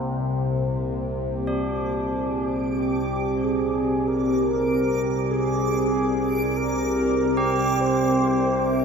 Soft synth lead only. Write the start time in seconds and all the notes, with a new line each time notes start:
0.23 G4
2.16 G#4
2.78 G4
3.43 G#4
4.07 A#4
5.31 G#4
6.57 A#4
7.81 C5